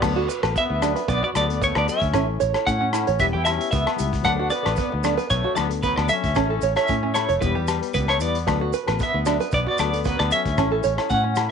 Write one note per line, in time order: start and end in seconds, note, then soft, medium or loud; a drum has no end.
0.00 0.27 D2 medium
0.00 0.16 F#3 medium
0.00 0.29 B3 medium
0.00 0.16 B3 medium
0.00 0.14 B3 medium
0.00 0.17 F#4 medium
0.00 0.15 A4 medium
0.00 0.29 D5 medium
0.00 kick medium
0.00 cross-stick medium
0.00 crash medium
0.00 low agogo medium
0.00 maracas medium
0.16 0.33 B3 soft
0.16 0.27 F#4 medium
0.16 0.33 F#4 soft
0.16 0.32 A4 medium
0.28 0.40 B4 medium
0.28 closed hi-hat soft
0.28 maracas medium
0.43 0.55 A1 loud
0.43 0.60 B3 soft
0.43 0.59 F#4 soft
0.43 0.59 A4 medium
0.43 0.53 B4 medium
0.43 cross-stick medium
0.43 closed hi-hat soft
0.43 low agogo medium
0.55 0.67 B3 medium
0.55 1.06 B3 medium
0.55 1.06 E5 loud
0.55 kick medium
0.55 closed hi-hat soft
0.55 maracas medium
0.70 0.94 D2 medium
0.70 0.80 B3 medium
0.81 0.98 F#3 medium
0.81 0.99 B3 medium
0.81 0.93 D4 medium
0.81 0.99 F#4 medium
0.81 0.99 A4 medium
0.81 cross-stick medium
0.81 closed hi-hat soft
0.81 low agogo medium
0.81 maracas loud
0.96 1.06 B4 medium
0.96 closed hi-hat soft
0.96 maracas soft
1.08 1.21 B1 medium
1.08 1.20 B3 medium
1.08 1.23 B3 medium
1.08 1.22 D5 medium
1.08 kick medium
1.08 closed hi-hat medium
1.08 maracas medium
1.23 1.31 B3 medium
1.23 1.33 F#4 medium
1.23 1.29 D5 medium
1.33 1.72 D2 medium
1.33 1.48 F#3 medium
1.33 1.49 B3 medium
1.33 1.48 F#4 medium
1.33 1.47 A4 medium
1.33 1.63 D5 medium
1.33 cross-stick medium
1.33 closed hi-hat medium
1.33 low agogo medium
1.33 maracas medium
1.38 1.61 B3 medium
1.48 1.65 B3 soft
1.48 1.64 A4 soft
1.48 muted nylon-string guitar stroke soft
1.48 closed hi-hat soft
1.62 1.76 A3 medium
1.62 1.73 B3 medium
1.62 1.77 C#5 medium
1.62 kick medium
1.62 closed hi-hat soft
1.62 maracas medium
1.75 1.87 D2 medium
1.75 1.86 B3 medium
1.75 1.89 D5 medium
1.75 cross-stick medium
1.75 low agogo medium
1.79 1.89 B3 medium
1.86 2.04 F#3 medium
1.86 2.04 B3 medium
1.86 2.04 F#4 medium
1.86 2.05 A4 medium
1.86 2.38 E5 medium
1.86 closed hi-hat soft
1.86 maracas loud
1.91 2.38 C#4 medium
2.01 2.13 D2 medium
2.01 kick medium
2.01 closed hi-hat soft
2.01 maracas soft
2.13 2.38 A1 loud
2.13 2.28 C#4 medium
2.13 2.26 C#4 medium
2.13 2.27 E4 medium
2.13 2.25 A4 medium
2.13 kick medium
2.13 cross-stick medium
2.13 closed hi-hat soft
2.13 low agogo medium
2.13 maracas medium
2.26 2.43 E4 soft
2.26 2.42 A4 soft
2.40 2.54 A1 medium
2.40 2.52 C#5 medium
2.40 closed hi-hat soft
2.40 maracas medium
2.53 2.70 E4 soft
2.53 2.69 A4 soft
2.53 2.65 C#5 medium
2.53 cross-stick medium
2.53 closed hi-hat soft
2.53 low agogo medium
2.67 3.04 A2 medium
2.67 2.78 C#4 medium
2.67 3.17 C#4 medium
2.67 3.16 F#5 loud
2.67 kick medium
2.67 closed hi-hat soft
2.67 maracas medium
2.81 2.91 C#4 medium
2.92 3.09 C#4 medium
2.92 3.05 E4 medium
2.92 3.10 E4 medium
2.92 3.10 A4 medium
2.92 cross-stick medium
2.92 closed hi-hat soft
2.92 low agogo medium
2.92 maracas medium
3.07 3.19 A1 medium
3.07 3.17 C#5 medium
3.07 closed hi-hat soft
3.07 maracas soft
3.19 3.33 E1 loud
3.19 3.36 G3 medium
3.19 3.36 B3 medium
3.19 3.31 B3 medium
3.19 3.27 B3 medium
3.19 3.36 E4 medium
3.19 3.36 G4 medium
3.19 3.25 E5 loud
3.19 kick medium
3.19 closed hi-hat medium
3.19 maracas medium
3.33 3.58 E2 medium
3.33 3.46 E4 medium
3.33 3.44 G4 medium
3.33 3.44 G5 loud
3.45 3.59 G3 medium
3.45 3.58 B3 medium
3.45 3.57 E4 medium
3.45 3.56 G4 medium
3.45 3.70 E5 medium
3.45 cross-stick medium
3.45 closed hi-hat medium
3.45 low agogo medium
3.45 maracas medium
3.49 3.72 C#4 medium
3.58 3.75 B3 soft
3.58 3.74 E4 soft
3.58 3.74 G4 medium
3.58 closed hi-hat medium
3.71 3.85 C#2 medium
3.71 3.84 B3 medium
3.71 4.22 B3 medium
3.71 4.21 E5 medium
3.71 kick medium
3.71 closed hi-hat medium
3.71 maracas medium
3.86 3.97 B3 medium
3.86 cross-stick medium
3.86 low agogo medium
3.96 4.14 G3 medium
3.96 4.14 B3 medium
3.96 4.14 E4 medium
3.96 4.15 G4 medium
3.96 maracas medium
4.00 4.23 C#2 medium
4.00 closed hi-hat medium
4.12 kick medium
4.12 closed hi-hat medium
4.12 maracas soft
4.23 4.49 D2 medium
4.23 4.38 F#3 medium
4.23 4.37 B3 medium
4.23 4.34 A4 medium
4.23 4.49 F#5 loud
4.23 muted nylon-string guitar stroke medium
4.23 kick medium
4.23 cross-stick medium
4.23 closed hi-hat soft
4.23 low agogo medium
4.23 maracas medium
4.27 4.50 D4 medium
4.36 4.54 B3 soft
4.36 4.53 D4 medium
4.36 4.49 F#4 medium
4.36 4.53 A4 medium
4.50 4.63 B4 medium
4.50 5.26 D5 loud
4.50 closed hi-hat soft
4.50 maracas medium
4.54 5.28 B3 medium
4.63 4.77 A1 loud
4.63 4.81 B3 soft
4.63 4.80 D4 soft
4.63 4.79 A4 medium
4.63 4.76 B4 medium
4.63 cross-stick medium
4.63 closed hi-hat soft
4.63 low agogo medium
4.76 4.89 B3 medium
4.76 kick medium
4.76 closed hi-hat medium
4.76 maracas medium
4.92 5.17 D2 medium
4.92 muted five-string banjo stroke medium
5.03 5.20 F#3 medium
5.03 5.20 B3 medium
5.03 5.15 D4 medium
5.03 5.21 D4 medium
5.03 5.21 A4 medium
5.03 cross-stick medium
5.03 closed hi-hat medium
5.03 low agogo medium
5.03 maracas loud
5.17 5.28 B4 medium
5.17 closed hi-hat soft
5.17 maracas soft
5.30 5.43 B1 loud
5.30 5.42 B3 medium
5.30 5.55 C#5 medium
5.30 kick loud
5.30 closed hi-hat medium
5.30 maracas medium
5.34 5.57 A3 medium
5.44 5.54 F#4 medium
5.55 5.94 D2 medium
5.55 5.70 F#3 medium
5.55 5.70 B3 medium
5.55 5.69 D4 medium
5.55 5.68 A4 medium
5.55 5.63 D5 medium
5.55 cross-stick medium
5.55 closed hi-hat soft
5.55 low agogo medium
5.55 maracas medium
5.60 5.71 B3 medium
5.69 5.86 B3 soft
5.69 5.86 D4 soft
5.69 5.85 A4 soft
5.69 closed hi-hat medium
5.83 6.02 F#3 medium
5.83 5.95 B3 medium
5.83 5.96 B4 medium
5.83 kick medium
5.83 closed hi-hat soft
5.83 maracas medium
5.96 6.09 D2 loud
5.96 6.08 B3 medium
5.96 6.09 D5 medium
5.96 cross-stick medium
5.96 low agogo medium
6.00 6.11 B3 medium
6.07 6.25 F#3 medium
6.07 6.25 B3 medium
6.07 6.26 D4 medium
6.07 6.26 A4 medium
6.07 6.72 E5 medium
6.07 closed hi-hat soft
6.07 maracas medium
6.12 6.74 C#4 medium
6.24 6.35 D2 medium
6.24 kick medium
6.24 closed hi-hat medium
6.24 maracas soft
6.35 6.60 A1 loud
6.35 6.49 C#4 medium
6.35 6.47 C#4 medium
6.35 6.50 E4 medium
6.35 6.48 A4 medium
6.35 kick medium
6.35 cross-stick medium
6.35 closed hi-hat soft
6.35 low agogo medium
6.35 maracas medium
6.49 6.66 E4 soft
6.49 6.65 A4 medium
6.49 6.60 A4 medium
6.61 6.75 A1 medium
6.61 6.74 C#5 medium
6.61 closed hi-hat soft
6.61 maracas loud
6.76 6.92 E4 soft
6.76 6.91 A4 medium
6.76 6.87 C#5 medium
6.76 7.14 E5 loud
6.76 cross-stick medium
6.76 closed hi-hat soft
6.76 low agogo medium
6.76 maracas soft
6.80 7.14 C#4 medium
6.87 7.26 A2 medium
6.87 7.00 C#4 medium
6.87 kick medium
6.87 closed hi-hat medium
6.87 maracas medium
7.03 7.13 C#4 medium
7.14 7.41 A3 medium
7.14 7.31 C#4 medium
7.14 7.27 E4 medium
7.14 7.32 E4 medium
7.14 7.33 A4 medium
7.14 7.39 C#5 medium
7.14 cross-stick medium
7.14 closed hi-hat soft
7.14 low agogo medium
7.14 maracas loud
7.29 7.41 F1 medium
7.29 7.39 C#5 medium
7.29 closed hi-hat soft
7.29 maracas soft
7.41 7.54 E1 loud
7.41 7.57 G3 medium
7.41 7.58 B3 medium
7.41 7.53 B3 medium
7.41 7.58 E4 medium
7.41 7.93 B4 medium
7.41 7.58 B4 medium
7.41 kick loud
7.41 closed hi-hat medium
7.41 maracas medium
7.45 7.92 G3 medium
7.55 7.80 E2 medium
7.55 7.65 G4 medium
7.67 7.81 G3 medium
7.67 7.82 B3 medium
7.67 7.82 E4 medium
7.67 7.80 B4 medium
7.67 cross-stick medium
7.67 closed hi-hat medium
7.67 low agogo medium
7.67 maracas medium
7.81 7.98 B3 soft
7.81 7.97 B4 medium
7.81 closed hi-hat medium
7.81 maracas soft
7.94 8.21 C#2 medium
7.94 8.06 B3 medium
7.94 8.08 B4 medium
7.94 kick medium
7.94 closed hi-hat soft
7.94 maracas medium
7.98 8.09 G3 medium
8.08 8.21 A3 medium
8.08 8.19 B3 medium
8.08 8.20 C#5 medium
8.08 cross-stick medium
8.08 low agogo medium
8.19 8.45 E2 medium
8.19 8.36 G3 medium
8.19 8.37 B3 medium
8.19 8.71 B3 medium
8.19 8.37 E4 medium
8.19 8.37 B4 medium
8.19 8.70 D5 medium
8.19 closed hi-hat medium
8.19 maracas loud
8.34 closed hi-hat medium
8.34 maracas soft
8.47 8.71 D2 medium
8.47 8.61 F#3 medium
8.47 8.60 B3 medium
8.47 8.58 B3 medium
8.47 8.59 F#4 medium
8.47 8.58 A4 medium
8.47 kick medium
8.47 cross-stick medium
8.47 closed hi-hat medium
8.47 low agogo medium
8.47 maracas medium
8.60 8.76 B3 soft
8.60 8.76 F#4 medium
8.60 8.71 F#4 medium
8.60 8.75 A4 medium
8.73 8.85 B4 medium
8.73 closed hi-hat soft
8.73 maracas medium
8.87 8.99 A1 loud
8.87 9.03 B3 soft
8.87 9.03 F#4 soft
8.87 9.02 A4 medium
8.87 8.98 B4 medium
8.87 cross-stick medium
8.87 closed hi-hat soft
8.87 low agogo medium
8.99 9.12 B3 medium
8.99 9.50 B3 medium
8.99 kick medium
8.99 closed hi-hat medium
8.99 maracas medium
9.03 9.50 E5 medium
9.14 9.38 D2 medium
9.14 9.24 B3 medium
9.25 9.42 F#3 medium
9.25 9.42 B3 medium
9.25 9.37 D4 medium
9.25 9.43 F#4 medium
9.25 9.43 A4 medium
9.25 cross-stick medium
9.25 closed hi-hat soft
9.25 low agogo medium
9.25 maracas loud
9.40 9.50 B4 medium
9.40 closed hi-hat medium
9.40 maracas soft
9.52 9.66 B1 loud
9.52 9.64 B3 medium
9.52 9.67 B3 medium
9.52 9.66 D5 medium
9.52 kick loud
9.52 closed hi-hat medium
9.52 maracas medium
9.67 9.79 B3 medium
9.67 9.77 F#4 medium
9.67 9.79 D5 medium
9.78 10.16 D2 medium
9.78 9.93 F#3 medium
9.78 9.93 B3 medium
9.78 10.05 B3 medium
9.78 9.93 F#4 medium
9.78 9.92 A4 medium
9.78 10.07 D5 medium
9.78 cross-stick medium
9.78 closed hi-hat medium
9.78 low agogo medium
9.78 maracas medium
9.93 10.09 B3 soft
9.93 10.08 F#4 soft
9.93 10.08 A4 medium
9.93 closed hi-hat medium
10.04 10.19 F#3 medium
10.04 10.17 B3 medium
10.04 10.19 B4 medium
10.04 kick medium
10.04 closed hi-hat soft
10.04 maracas medium
10.19 10.31 D2 medium
10.19 10.29 B3 medium
10.19 10.32 B3 medium
10.19 10.31 D5 medium
10.19 cross-stick medium
10.19 low agogo medium
10.31 10.48 F#3 medium
10.31 10.48 B3 medium
10.31 11.08 C#4 medium
10.31 10.48 F#4 medium
10.31 10.48 A4 medium
10.31 11.10 E5 medium
10.31 closed hi-hat soft
10.31 maracas medium
10.45 10.57 D2 medium
10.45 kick medium
10.45 closed hi-hat medium
10.45 maracas soft
10.57 10.82 A1 loud
10.57 10.71 C#4 medium
10.57 10.70 C#4 medium
10.57 10.72 E4 medium
10.57 10.70 A4 medium
10.57 kick medium
10.57 cross-stick medium
10.57 closed hi-hat soft
10.57 low agogo medium
10.57 maracas medium
10.71 10.88 E4 soft
10.71 10.87 A4 medium
10.71 10.82 A4 medium
10.83 10.97 A1 medium
10.83 10.95 C#5 medium
10.83 closed hi-hat soft
10.83 maracas medium
10.96 11.14 E4 soft
10.96 11.13 A4 medium
10.96 11.08 C#5 medium
10.96 cross-stick medium
10.96 closed hi-hat soft
10.96 low agogo medium
11.10 11.48 A2 medium
11.10 11.22 C#4 medium
11.10 11.49 C#4 medium
11.10 11.48 F#5 loud
11.10 kick medium
11.10 closed hi-hat soft
11.10 maracas medium
11.24 11.35 C#4 medium
11.35 11.51 C#4 medium
11.35 11.51 E4 medium
11.35 11.48 E4 medium
11.35 11.51 A4 medium
11.35 cross-stick medium
11.35 closed hi-hat soft
11.35 low agogo medium
11.35 maracas loud